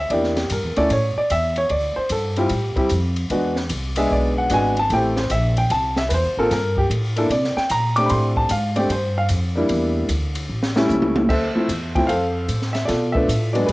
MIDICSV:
0, 0, Header, 1, 5, 480
1, 0, Start_track
1, 0, Tempo, 399467
1, 130, Time_signature, 4, 2, 24, 8
1, 16491, End_track
2, 0, Start_track
2, 0, Title_t, "Grand piano"
2, 0, Program_c, 0, 0
2, 0, Note_on_c, 0, 76, 95
2, 127, Note_off_c, 0, 76, 0
2, 131, Note_on_c, 0, 74, 73
2, 134, Note_on_c, 0, 58, 57
2, 136, Note_on_c, 0, 62, 56
2, 148, Note_on_c, 0, 64, 57
2, 148, Note_on_c, 0, 67, 69
2, 418, Note_off_c, 0, 58, 0
2, 418, Note_off_c, 0, 62, 0
2, 422, Note_off_c, 0, 67, 0
2, 425, Note_off_c, 0, 64, 0
2, 438, Note_off_c, 0, 74, 0
2, 441, Note_on_c, 0, 67, 63
2, 602, Note_off_c, 0, 67, 0
2, 628, Note_on_c, 0, 70, 73
2, 920, Note_on_c, 0, 61, 65
2, 923, Note_on_c, 0, 57, 69
2, 927, Note_off_c, 0, 70, 0
2, 930, Note_on_c, 0, 74, 95
2, 933, Note_on_c, 0, 64, 63
2, 934, Note_on_c, 0, 69, 73
2, 1071, Note_off_c, 0, 61, 0
2, 1072, Note_off_c, 0, 57, 0
2, 1077, Note_off_c, 0, 64, 0
2, 1077, Note_off_c, 0, 69, 0
2, 1086, Note_off_c, 0, 74, 0
2, 1108, Note_on_c, 0, 73, 77
2, 1408, Note_off_c, 0, 73, 0
2, 1414, Note_on_c, 0, 74, 86
2, 1569, Note_off_c, 0, 74, 0
2, 1580, Note_on_c, 0, 76, 102
2, 1884, Note_off_c, 0, 76, 0
2, 1894, Note_on_c, 0, 73, 90
2, 2049, Note_off_c, 0, 73, 0
2, 2052, Note_on_c, 0, 74, 84
2, 2357, Note_on_c, 0, 72, 85
2, 2360, Note_off_c, 0, 74, 0
2, 2521, Note_off_c, 0, 72, 0
2, 2546, Note_on_c, 0, 69, 78
2, 2847, Note_off_c, 0, 69, 0
2, 2850, Note_on_c, 0, 60, 58
2, 2853, Note_on_c, 0, 55, 73
2, 2860, Note_on_c, 0, 64, 66
2, 2865, Note_on_c, 0, 65, 76
2, 2866, Note_on_c, 0, 67, 80
2, 2996, Note_off_c, 0, 60, 0
2, 2998, Note_off_c, 0, 55, 0
2, 3001, Note_off_c, 0, 64, 0
2, 3004, Note_off_c, 0, 65, 0
2, 3315, Note_off_c, 0, 67, 0
2, 3318, Note_on_c, 0, 55, 72
2, 3321, Note_on_c, 0, 60, 60
2, 3329, Note_on_c, 0, 64, 70
2, 3333, Note_on_c, 0, 67, 74
2, 3470, Note_off_c, 0, 55, 0
2, 3472, Note_off_c, 0, 60, 0
2, 3476, Note_off_c, 0, 64, 0
2, 3478, Note_off_c, 0, 67, 0
2, 3970, Note_on_c, 0, 56, 57
2, 3978, Note_on_c, 0, 59, 55
2, 3986, Note_on_c, 0, 62, 62
2, 3988, Note_on_c, 0, 66, 73
2, 4258, Note_off_c, 0, 56, 0
2, 4262, Note_off_c, 0, 59, 0
2, 4265, Note_off_c, 0, 62, 0
2, 4266, Note_off_c, 0, 66, 0
2, 4770, Note_on_c, 0, 56, 73
2, 4776, Note_on_c, 0, 59, 68
2, 4778, Note_on_c, 0, 76, 79
2, 4784, Note_on_c, 0, 62, 68
2, 4785, Note_on_c, 0, 68, 77
2, 4932, Note_off_c, 0, 76, 0
2, 4955, Note_on_c, 0, 74, 79
2, 5253, Note_off_c, 0, 74, 0
2, 5266, Note_on_c, 0, 78, 87
2, 5381, Note_off_c, 0, 56, 0
2, 5384, Note_off_c, 0, 59, 0
2, 5388, Note_off_c, 0, 62, 0
2, 5388, Note_off_c, 0, 68, 0
2, 5406, Note_on_c, 0, 56, 76
2, 5414, Note_on_c, 0, 59, 64
2, 5415, Note_on_c, 0, 62, 65
2, 5417, Note_off_c, 0, 78, 0
2, 5422, Note_on_c, 0, 66, 80
2, 5452, Note_on_c, 0, 80, 94
2, 5696, Note_off_c, 0, 56, 0
2, 5700, Note_off_c, 0, 59, 0
2, 5700, Note_off_c, 0, 62, 0
2, 5704, Note_off_c, 0, 66, 0
2, 5742, Note_off_c, 0, 80, 0
2, 5760, Note_on_c, 0, 81, 104
2, 5904, Note_off_c, 0, 81, 0
2, 5914, Note_on_c, 0, 57, 68
2, 5920, Note_on_c, 0, 60, 65
2, 5920, Note_on_c, 0, 64, 62
2, 5928, Note_on_c, 0, 79, 92
2, 5929, Note_on_c, 0, 67, 75
2, 6190, Note_off_c, 0, 57, 0
2, 6193, Note_off_c, 0, 60, 0
2, 6193, Note_off_c, 0, 64, 0
2, 6197, Note_off_c, 0, 67, 0
2, 6220, Note_off_c, 0, 79, 0
2, 6230, Note_on_c, 0, 72, 69
2, 6379, Note_off_c, 0, 72, 0
2, 6385, Note_on_c, 0, 76, 89
2, 6688, Note_off_c, 0, 76, 0
2, 6705, Note_on_c, 0, 79, 92
2, 6856, Note_off_c, 0, 79, 0
2, 6865, Note_on_c, 0, 81, 103
2, 7168, Note_off_c, 0, 81, 0
2, 7180, Note_on_c, 0, 76, 84
2, 7318, Note_on_c, 0, 71, 63
2, 7334, Note_off_c, 0, 76, 0
2, 7352, Note_off_c, 0, 71, 0
2, 7378, Note_on_c, 0, 72, 91
2, 7665, Note_off_c, 0, 72, 0
2, 7671, Note_on_c, 0, 58, 73
2, 7673, Note_on_c, 0, 70, 88
2, 7674, Note_on_c, 0, 60, 74
2, 7677, Note_on_c, 0, 65, 64
2, 7682, Note_on_c, 0, 69, 89
2, 7808, Note_off_c, 0, 58, 0
2, 7809, Note_off_c, 0, 60, 0
2, 7809, Note_off_c, 0, 70, 0
2, 7811, Note_off_c, 0, 65, 0
2, 7825, Note_off_c, 0, 69, 0
2, 7839, Note_on_c, 0, 70, 100
2, 8135, Note_off_c, 0, 70, 0
2, 8140, Note_on_c, 0, 67, 92
2, 8235, Note_off_c, 0, 67, 0
2, 8605, Note_on_c, 0, 58, 70
2, 8618, Note_on_c, 0, 62, 75
2, 8621, Note_on_c, 0, 64, 75
2, 8630, Note_on_c, 0, 69, 83
2, 8754, Note_off_c, 0, 58, 0
2, 8761, Note_off_c, 0, 62, 0
2, 8763, Note_off_c, 0, 64, 0
2, 8767, Note_off_c, 0, 69, 0
2, 8792, Note_on_c, 0, 74, 81
2, 9091, Note_off_c, 0, 74, 0
2, 9094, Note_on_c, 0, 79, 95
2, 9250, Note_off_c, 0, 79, 0
2, 9268, Note_on_c, 0, 82, 106
2, 9564, Note_on_c, 0, 86, 110
2, 9569, Note_off_c, 0, 82, 0
2, 9583, Note_on_c, 0, 57, 61
2, 9589, Note_on_c, 0, 60, 61
2, 9589, Note_on_c, 0, 62, 66
2, 9593, Note_on_c, 0, 67, 76
2, 9684, Note_on_c, 0, 83, 61
2, 9724, Note_off_c, 0, 83, 0
2, 9725, Note_off_c, 0, 86, 0
2, 9731, Note_on_c, 0, 84, 92
2, 10039, Note_off_c, 0, 84, 0
2, 10056, Note_on_c, 0, 81, 93
2, 10186, Note_off_c, 0, 57, 0
2, 10189, Note_off_c, 0, 60, 0
2, 10189, Note_off_c, 0, 62, 0
2, 10191, Note_off_c, 0, 67, 0
2, 10210, Note_off_c, 0, 81, 0
2, 10225, Note_on_c, 0, 77, 90
2, 10526, Note_off_c, 0, 77, 0
2, 10527, Note_on_c, 0, 74, 88
2, 10534, Note_on_c, 0, 57, 66
2, 10535, Note_on_c, 0, 60, 73
2, 10537, Note_on_c, 0, 62, 60
2, 10549, Note_on_c, 0, 67, 78
2, 10678, Note_off_c, 0, 57, 0
2, 10678, Note_off_c, 0, 60, 0
2, 10679, Note_off_c, 0, 62, 0
2, 10685, Note_off_c, 0, 67, 0
2, 10686, Note_off_c, 0, 74, 0
2, 10715, Note_on_c, 0, 72, 78
2, 11011, Note_off_c, 0, 72, 0
2, 11029, Note_on_c, 0, 77, 90
2, 11120, Note_off_c, 0, 77, 0
2, 11481, Note_on_c, 0, 55, 73
2, 11492, Note_on_c, 0, 58, 66
2, 11498, Note_on_c, 0, 62, 62
2, 11504, Note_on_c, 0, 64, 69
2, 12093, Note_off_c, 0, 55, 0
2, 12099, Note_off_c, 0, 58, 0
2, 12102, Note_off_c, 0, 62, 0
2, 12105, Note_off_c, 0, 64, 0
2, 12924, Note_on_c, 0, 55, 84
2, 12932, Note_on_c, 0, 57, 78
2, 12938, Note_on_c, 0, 61, 79
2, 12939, Note_on_c, 0, 64, 93
2, 13534, Note_off_c, 0, 55, 0
2, 13538, Note_off_c, 0, 57, 0
2, 13541, Note_off_c, 0, 61, 0
2, 13541, Note_off_c, 0, 64, 0
2, 13565, Note_on_c, 0, 76, 94
2, 13576, Note_on_c, 0, 72, 68
2, 13581, Note_on_c, 0, 69, 62
2, 13880, Note_on_c, 0, 53, 65
2, 13884, Note_on_c, 0, 57, 71
2, 13892, Note_on_c, 0, 64, 69
2, 13896, Note_on_c, 0, 60, 61
2, 14028, Note_off_c, 0, 53, 0
2, 14030, Note_off_c, 0, 57, 0
2, 14034, Note_off_c, 0, 64, 0
2, 14036, Note_off_c, 0, 60, 0
2, 14364, Note_on_c, 0, 79, 95
2, 14367, Note_on_c, 0, 53, 73
2, 14375, Note_on_c, 0, 57, 62
2, 14378, Note_on_c, 0, 60, 68
2, 14386, Note_on_c, 0, 64, 78
2, 14387, Note_off_c, 0, 76, 0
2, 14483, Note_off_c, 0, 72, 0
2, 14485, Note_off_c, 0, 69, 0
2, 14503, Note_on_c, 0, 77, 94
2, 14512, Note_off_c, 0, 53, 0
2, 14516, Note_off_c, 0, 57, 0
2, 14517, Note_off_c, 0, 60, 0
2, 14520, Note_on_c, 0, 72, 73
2, 14521, Note_off_c, 0, 64, 0
2, 14531, Note_off_c, 0, 79, 0
2, 14534, Note_on_c, 0, 69, 73
2, 14960, Note_off_c, 0, 77, 0
2, 15297, Note_on_c, 0, 76, 79
2, 15434, Note_off_c, 0, 72, 0
2, 15442, Note_off_c, 0, 69, 0
2, 15445, Note_on_c, 0, 74, 81
2, 15460, Note_off_c, 0, 76, 0
2, 15473, Note_on_c, 0, 65, 69
2, 15474, Note_on_c, 0, 69, 67
2, 15770, Note_on_c, 0, 76, 85
2, 15778, Note_off_c, 0, 69, 0
2, 15793, Note_off_c, 0, 74, 0
2, 15796, Note_on_c, 0, 69, 62
2, 15797, Note_on_c, 0, 53, 64
2, 15800, Note_on_c, 0, 57, 61
2, 15811, Note_on_c, 0, 59, 62
2, 15815, Note_on_c, 0, 62, 76
2, 15946, Note_off_c, 0, 53, 0
2, 15948, Note_off_c, 0, 57, 0
2, 15953, Note_off_c, 0, 59, 0
2, 15956, Note_off_c, 0, 62, 0
2, 16259, Note_on_c, 0, 74, 73
2, 16270, Note_on_c, 0, 54, 73
2, 16281, Note_off_c, 0, 76, 0
2, 16281, Note_on_c, 0, 56, 70
2, 16288, Note_on_c, 0, 59, 72
2, 16292, Note_on_c, 0, 62, 74
2, 16391, Note_off_c, 0, 65, 0
2, 16397, Note_off_c, 0, 69, 0
2, 16419, Note_on_c, 0, 71, 76
2, 16422, Note_off_c, 0, 62, 0
2, 16423, Note_off_c, 0, 54, 0
2, 16428, Note_off_c, 0, 56, 0
2, 16432, Note_off_c, 0, 59, 0
2, 16439, Note_off_c, 0, 74, 0
2, 16440, Note_on_c, 0, 62, 57
2, 16446, Note_on_c, 0, 68, 54
2, 16491, Note_off_c, 0, 62, 0
2, 16491, Note_off_c, 0, 68, 0
2, 16491, Note_off_c, 0, 71, 0
2, 16491, End_track
3, 0, Start_track
3, 0, Title_t, "Upright bass"
3, 0, Program_c, 1, 32
3, 123, Note_on_c, 1, 40, 89
3, 592, Note_off_c, 1, 40, 0
3, 607, Note_on_c, 1, 43, 81
3, 759, Note_off_c, 1, 43, 0
3, 759, Note_on_c, 1, 40, 51
3, 918, Note_off_c, 1, 40, 0
3, 925, Note_on_c, 1, 38, 65
3, 1077, Note_off_c, 1, 38, 0
3, 1084, Note_on_c, 1, 45, 85
3, 1382, Note_off_c, 1, 45, 0
3, 1567, Note_on_c, 1, 40, 85
3, 2035, Note_off_c, 1, 40, 0
3, 2044, Note_on_c, 1, 38, 86
3, 2343, Note_off_c, 1, 38, 0
3, 2525, Note_on_c, 1, 43, 89
3, 2994, Note_off_c, 1, 43, 0
3, 3008, Note_on_c, 1, 45, 79
3, 3305, Note_off_c, 1, 45, 0
3, 3494, Note_on_c, 1, 41, 88
3, 3960, Note_off_c, 1, 41, 0
3, 3967, Note_on_c, 1, 40, 93
3, 4436, Note_off_c, 1, 40, 0
3, 4451, Note_on_c, 1, 36, 86
3, 4918, Note_off_c, 1, 36, 0
3, 4936, Note_on_c, 1, 35, 89
3, 5401, Note_off_c, 1, 35, 0
3, 5408, Note_on_c, 1, 32, 83
3, 5877, Note_off_c, 1, 32, 0
3, 5890, Note_on_c, 1, 33, 93
3, 6358, Note_off_c, 1, 33, 0
3, 6367, Note_on_c, 1, 34, 87
3, 6837, Note_off_c, 1, 34, 0
3, 6850, Note_on_c, 1, 36, 91
3, 7318, Note_off_c, 1, 36, 0
3, 7338, Note_on_c, 1, 40, 86
3, 7494, Note_on_c, 1, 36, 52
3, 7512, Note_off_c, 1, 40, 0
3, 7650, Note_off_c, 1, 36, 0
3, 7657, Note_on_c, 1, 33, 65
3, 7805, Note_off_c, 1, 33, 0
3, 7819, Note_on_c, 1, 43, 94
3, 8278, Note_off_c, 1, 43, 0
3, 8286, Note_on_c, 1, 45, 92
3, 8755, Note_off_c, 1, 45, 0
3, 8766, Note_on_c, 1, 48, 84
3, 9064, Note_off_c, 1, 48, 0
3, 9255, Note_on_c, 1, 46, 75
3, 9719, Note_off_c, 1, 46, 0
3, 9743, Note_on_c, 1, 45, 95
3, 10203, Note_off_c, 1, 45, 0
3, 10220, Note_on_c, 1, 44, 85
3, 10681, Note_off_c, 1, 44, 0
3, 10686, Note_on_c, 1, 43, 88
3, 11153, Note_off_c, 1, 43, 0
3, 11169, Note_on_c, 1, 41, 91
3, 11635, Note_off_c, 1, 41, 0
3, 11645, Note_on_c, 1, 40, 95
3, 12112, Note_off_c, 1, 40, 0
3, 12120, Note_on_c, 1, 38, 93
3, 12589, Note_off_c, 1, 38, 0
3, 12609, Note_on_c, 1, 33, 75
3, 13074, Note_off_c, 1, 33, 0
3, 13093, Note_on_c, 1, 37, 86
3, 13556, Note_off_c, 1, 37, 0
3, 13566, Note_on_c, 1, 38, 86
3, 13861, Note_off_c, 1, 38, 0
3, 14042, Note_on_c, 1, 40, 92
3, 14509, Note_off_c, 1, 40, 0
3, 14522, Note_on_c, 1, 41, 74
3, 14989, Note_off_c, 1, 41, 0
3, 15002, Note_on_c, 1, 45, 84
3, 15469, Note_off_c, 1, 45, 0
3, 15487, Note_on_c, 1, 47, 96
3, 15952, Note_off_c, 1, 47, 0
3, 15959, Note_on_c, 1, 45, 94
3, 16428, Note_off_c, 1, 45, 0
3, 16443, Note_on_c, 1, 44, 78
3, 16491, Note_off_c, 1, 44, 0
3, 16491, End_track
4, 0, Start_track
4, 0, Title_t, "Muted upright bass strokes"
4, 1401, Note_on_c, 9, 29, 38
4, 1521, Note_off_c, 9, 29, 0
4, 2365, Note_on_c, 9, 29, 40
4, 2485, Note_off_c, 9, 29, 0
4, 3318, Note_on_c, 9, 29, 37
4, 3438, Note_off_c, 9, 29, 0
4, 9090, Note_on_c, 9, 29, 39
4, 9210, Note_off_c, 9, 29, 0
4, 13881, Note_on_c, 9, 29, 38
4, 14001, Note_off_c, 9, 29, 0
4, 16491, End_track
5, 0, Start_track
5, 0, Title_t, "Drums"
5, 121, Note_on_c, 9, 51, 57
5, 242, Note_off_c, 9, 51, 0
5, 285, Note_on_c, 9, 38, 29
5, 405, Note_off_c, 9, 38, 0
5, 439, Note_on_c, 9, 51, 42
5, 442, Note_on_c, 9, 38, 47
5, 559, Note_off_c, 9, 51, 0
5, 562, Note_off_c, 9, 38, 0
5, 597, Note_on_c, 9, 44, 54
5, 597, Note_on_c, 9, 51, 73
5, 717, Note_off_c, 9, 44, 0
5, 717, Note_off_c, 9, 51, 0
5, 918, Note_on_c, 9, 51, 43
5, 1038, Note_off_c, 9, 51, 0
5, 1082, Note_on_c, 9, 51, 67
5, 1202, Note_off_c, 9, 51, 0
5, 1562, Note_on_c, 9, 44, 50
5, 1562, Note_on_c, 9, 51, 67
5, 1682, Note_off_c, 9, 44, 0
5, 1682, Note_off_c, 9, 51, 0
5, 1873, Note_on_c, 9, 51, 48
5, 1993, Note_off_c, 9, 51, 0
5, 2036, Note_on_c, 9, 51, 64
5, 2156, Note_off_c, 9, 51, 0
5, 2516, Note_on_c, 9, 44, 63
5, 2516, Note_on_c, 9, 51, 77
5, 2636, Note_off_c, 9, 44, 0
5, 2636, Note_off_c, 9, 51, 0
5, 2840, Note_on_c, 9, 51, 45
5, 2960, Note_off_c, 9, 51, 0
5, 2998, Note_on_c, 9, 51, 66
5, 3118, Note_off_c, 9, 51, 0
5, 3322, Note_on_c, 9, 36, 54
5, 3323, Note_on_c, 9, 51, 42
5, 3442, Note_off_c, 9, 36, 0
5, 3443, Note_off_c, 9, 51, 0
5, 3477, Note_on_c, 9, 44, 56
5, 3477, Note_on_c, 9, 51, 64
5, 3598, Note_off_c, 9, 44, 0
5, 3598, Note_off_c, 9, 51, 0
5, 3800, Note_on_c, 9, 51, 49
5, 3920, Note_off_c, 9, 51, 0
5, 3964, Note_on_c, 9, 51, 59
5, 4084, Note_off_c, 9, 51, 0
5, 4281, Note_on_c, 9, 38, 45
5, 4401, Note_off_c, 9, 38, 0
5, 4439, Note_on_c, 9, 44, 65
5, 4439, Note_on_c, 9, 51, 74
5, 4560, Note_off_c, 9, 44, 0
5, 4560, Note_off_c, 9, 51, 0
5, 4755, Note_on_c, 9, 51, 77
5, 4875, Note_off_c, 9, 51, 0
5, 5402, Note_on_c, 9, 44, 67
5, 5402, Note_on_c, 9, 51, 73
5, 5522, Note_off_c, 9, 44, 0
5, 5522, Note_off_c, 9, 51, 0
5, 5727, Note_on_c, 9, 51, 44
5, 5848, Note_off_c, 9, 51, 0
5, 5887, Note_on_c, 9, 51, 55
5, 6007, Note_off_c, 9, 51, 0
5, 6206, Note_on_c, 9, 38, 52
5, 6326, Note_off_c, 9, 38, 0
5, 6365, Note_on_c, 9, 44, 60
5, 6365, Note_on_c, 9, 51, 71
5, 6486, Note_off_c, 9, 44, 0
5, 6486, Note_off_c, 9, 51, 0
5, 6689, Note_on_c, 9, 51, 49
5, 6809, Note_off_c, 9, 51, 0
5, 6849, Note_on_c, 9, 51, 65
5, 6969, Note_off_c, 9, 51, 0
5, 7166, Note_on_c, 9, 38, 59
5, 7287, Note_off_c, 9, 38, 0
5, 7332, Note_on_c, 9, 44, 55
5, 7332, Note_on_c, 9, 51, 77
5, 7453, Note_off_c, 9, 44, 0
5, 7453, Note_off_c, 9, 51, 0
5, 7822, Note_on_c, 9, 51, 61
5, 7824, Note_on_c, 9, 38, 37
5, 7942, Note_off_c, 9, 51, 0
5, 7945, Note_off_c, 9, 38, 0
5, 8134, Note_on_c, 9, 36, 57
5, 8255, Note_off_c, 9, 36, 0
5, 8299, Note_on_c, 9, 44, 70
5, 8299, Note_on_c, 9, 51, 79
5, 8419, Note_off_c, 9, 44, 0
5, 8419, Note_off_c, 9, 51, 0
5, 8607, Note_on_c, 9, 51, 47
5, 8728, Note_off_c, 9, 51, 0
5, 8777, Note_on_c, 9, 51, 65
5, 8897, Note_off_c, 9, 51, 0
5, 8943, Note_on_c, 9, 38, 33
5, 9063, Note_off_c, 9, 38, 0
5, 9098, Note_on_c, 9, 38, 42
5, 9218, Note_off_c, 9, 38, 0
5, 9247, Note_on_c, 9, 44, 63
5, 9247, Note_on_c, 9, 51, 68
5, 9367, Note_off_c, 9, 44, 0
5, 9367, Note_off_c, 9, 51, 0
5, 9569, Note_on_c, 9, 51, 49
5, 9689, Note_off_c, 9, 51, 0
5, 9726, Note_on_c, 9, 51, 69
5, 9846, Note_off_c, 9, 51, 0
5, 10049, Note_on_c, 9, 36, 48
5, 10170, Note_off_c, 9, 36, 0
5, 10204, Note_on_c, 9, 44, 67
5, 10204, Note_on_c, 9, 51, 73
5, 10324, Note_off_c, 9, 44, 0
5, 10324, Note_off_c, 9, 51, 0
5, 10526, Note_on_c, 9, 51, 48
5, 10646, Note_off_c, 9, 51, 0
5, 10693, Note_on_c, 9, 51, 65
5, 10813, Note_off_c, 9, 51, 0
5, 11159, Note_on_c, 9, 44, 67
5, 11159, Note_on_c, 9, 51, 78
5, 11279, Note_off_c, 9, 44, 0
5, 11279, Note_off_c, 9, 51, 0
5, 11643, Note_on_c, 9, 51, 62
5, 11763, Note_off_c, 9, 51, 0
5, 12121, Note_on_c, 9, 44, 68
5, 12121, Note_on_c, 9, 51, 67
5, 12242, Note_off_c, 9, 44, 0
5, 12242, Note_off_c, 9, 51, 0
5, 12438, Note_on_c, 9, 51, 69
5, 12559, Note_off_c, 9, 51, 0
5, 12768, Note_on_c, 9, 38, 63
5, 12889, Note_off_c, 9, 38, 0
5, 12932, Note_on_c, 9, 38, 67
5, 13052, Note_off_c, 9, 38, 0
5, 13085, Note_on_c, 9, 44, 67
5, 13088, Note_on_c, 9, 48, 63
5, 13205, Note_off_c, 9, 44, 0
5, 13208, Note_off_c, 9, 48, 0
5, 13242, Note_on_c, 9, 48, 79
5, 13363, Note_off_c, 9, 48, 0
5, 13406, Note_on_c, 9, 48, 97
5, 13526, Note_off_c, 9, 48, 0
5, 13566, Note_on_c, 9, 36, 62
5, 13575, Note_on_c, 9, 49, 70
5, 13686, Note_off_c, 9, 36, 0
5, 13696, Note_off_c, 9, 49, 0
5, 14046, Note_on_c, 9, 44, 63
5, 14046, Note_on_c, 9, 51, 72
5, 14166, Note_off_c, 9, 44, 0
5, 14166, Note_off_c, 9, 51, 0
5, 14363, Note_on_c, 9, 36, 62
5, 14365, Note_on_c, 9, 51, 42
5, 14483, Note_off_c, 9, 36, 0
5, 14485, Note_off_c, 9, 51, 0
5, 14527, Note_on_c, 9, 51, 67
5, 14647, Note_off_c, 9, 51, 0
5, 15004, Note_on_c, 9, 44, 49
5, 15004, Note_on_c, 9, 51, 64
5, 15124, Note_off_c, 9, 44, 0
5, 15124, Note_off_c, 9, 51, 0
5, 15164, Note_on_c, 9, 38, 33
5, 15284, Note_off_c, 9, 38, 0
5, 15316, Note_on_c, 9, 51, 42
5, 15322, Note_on_c, 9, 38, 44
5, 15436, Note_off_c, 9, 51, 0
5, 15442, Note_off_c, 9, 38, 0
5, 15484, Note_on_c, 9, 51, 58
5, 15486, Note_on_c, 9, 38, 38
5, 15604, Note_off_c, 9, 51, 0
5, 15606, Note_off_c, 9, 38, 0
5, 15801, Note_on_c, 9, 36, 57
5, 15921, Note_off_c, 9, 36, 0
5, 15973, Note_on_c, 9, 44, 61
5, 15973, Note_on_c, 9, 51, 71
5, 16093, Note_off_c, 9, 44, 0
5, 16093, Note_off_c, 9, 51, 0
5, 16283, Note_on_c, 9, 51, 47
5, 16403, Note_off_c, 9, 51, 0
5, 16445, Note_on_c, 9, 51, 66
5, 16491, Note_off_c, 9, 51, 0
5, 16491, End_track
0, 0, End_of_file